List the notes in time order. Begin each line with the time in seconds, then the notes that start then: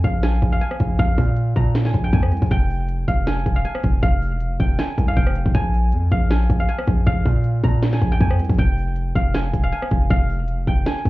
Already playing: G#5
0.04 A#1 F5, kick, closed hi-hat
0.23 G#5, snare, closed hi-hat
0.42 A#1, kick, closed hi-hat
0.52 F5
0.61 G#5, closed hi-hat
0.71 cross-stick
0.80 A#1, kick, closed hi-hat
0.99 A#1 F5, kick, closed hi-hat
1.18 A#2, kick, open hi-hat
1.37 closed hi-hat
1.56 A#2 A#5, kick, closed hi-hat
1.75 snare, closed hi-hat
1.85 G#5, snare
1.94 A#1, kick, closed hi-hat
2.04 G5
2.13 F2 G#5, kick, closed hi-hat
2.23 cross-stick
2.32 C2, closed hi-hat
2.37 closed hi-hat
2.42 A#1, kick, closed hi-hat
2.46 closed hi-hat
2.51 F1 G5, kick, closed hi-hat
2.70 open hi-hat
2.89 closed hi-hat
3.08 F1 F5, kick, closed hi-hat
3.27 G#5, snare, closed hi-hat
3.46 E1, kick, closed hi-hat
3.56 F5
3.65 G#5, closed hi-hat
3.75 cross-stick
3.83 F1, kick, closed hi-hat
4.03 F1 F5, kick, closed hi-hat
4.22 open hi-hat
4.32 E1
4.40 closed hi-hat
4.46 F1
4.60 F1 G5, kick, closed hi-hat
4.79 G#5, snare, closed hi-hat
4.98 C2, kick, closed hi-hat
5.08 F5
5.16 F1 G5, kick, closed hi-hat
5.27 cross-stick
5.35 closed hi-hat
5.46 F1, kick
5.55 A#1 G#5, kick, closed hi-hat
5.74 open hi-hat
5.92 F2, closed hi-hat
6.12 A#1 F5, kick, closed hi-hat
6.30 G#5, snare, closed hi-hat
6.50 A#1, kick, closed hi-hat
6.60 F5
6.69 G#5, closed hi-hat
6.79 cross-stick
6.87 A#1, kick, closed hi-hat
7.06 A#1 F5, kick, closed hi-hat
7.26 A#2, kick, open hi-hat
7.44 closed hi-hat
7.64 A#2 A#5, kick, closed hi-hat
7.82 snare, closed hi-hat
7.93 G#5, snare
8.02 A#1, kick, closed hi-hat
8.12 G5
8.21 F2 G#5, kick, closed hi-hat
8.31 cross-stick
8.39 C2, closed hi-hat
8.45 closed hi-hat
8.49 A#1, kick, closed hi-hat
8.54 closed hi-hat
8.58 F1 G5, kick, closed hi-hat
8.78 open hi-hat
8.96 closed hi-hat
9.15 F1 F5, kick, closed hi-hat
9.34 G#5, snare, closed hi-hat
9.53 E1, kick, closed hi-hat
9.63 F5
9.72 G#5, closed hi-hat
9.82 cross-stick
9.91 F1, kick, closed hi-hat
10.10 F1 F5, kick, closed hi-hat
10.30 open hi-hat
10.39 E1
10.48 closed hi-hat
10.53 F1
10.67 F1 G5, kick, closed hi-hat
10.86 G#5, snare, closed hi-hat
11.05 C2, kick, closed hi-hat